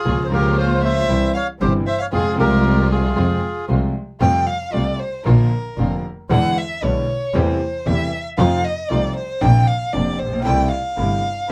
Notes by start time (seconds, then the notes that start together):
Already playing: F4 G#4
0.04 C#2 C#3 F3 A#3 C#4 F4
0.24 C5
0.29 C#2 C#3 F3 A#3 C#4 F4 A#4
0.33 F4 G4 A#4
0.57 F4 C5
0.83 C5 E5
1.08 C2 C3 E3 G3 C4 E4
1.34 C#5 F5
1.60 G1 G2 C3 E3 G3 C4 E4 G4 C5
1.87 C5 E5
1.99 C#5 F5
2.11 F2 C3 F3 G#3 C4 F4 G#4
2.35 C2 C3 F3 G#3 C4 F4 A#4
2.39 G4 A#4
2.91 F4 G#4
3.16 F2 C3 F3 G#3 C4 F4
3.68 C2 C3 F3 G#3 C4 F4
4.20 F2 C3 F3 G3 A3 F4 G5
4.47 F5
4.73 C2 C3 G3 A3 F4 D5
4.99 C5
5.25 A#1 A#2 D3 F3 A#3 D4 F4 A#4
5.77 F1 F2 D3 F3 A#3 D4 F4
6.29 E2 D3 E3 G#3 B3 D4 E4 F#5
6.58 E5
6.82 B1 B2 D3 G#3 B3 D4 E4 C#5
7.33 E2 C3 E3 G3 A3 C4 E4 G4 C5
7.86 E2 C3 E3 G3 A3 C4 E4 G4 E5
8.38 F2 C3 F3 A3 D#4 F4 F5
8.64 D#5
8.89 C2 C3 F3 A3 D#4 F4 D5
9.16 C5
9.41 A#1 A#2 C3 F3 A#3 C4 D4 G5
9.68 F5
9.93 F1 F2 C3 F3 A#3 C4 D4 D5
10.19 A#1 C5
10.26 A1
10.33 A#1
10.39 B1
10.44 C2 C3 G3 A3 C4 E4 G5
10.71 F5
10.97 G1 G2 C3 G3 A3 C4 E4